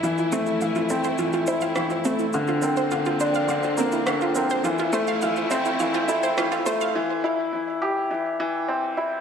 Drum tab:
SH |xxxxxxxxxxxxxxxx|xxxxxxxxxxxxxxxx|xxxxxxxxxxxxxxxx|----------------|
SD |------------r---|------------r---|------------r---|----------------|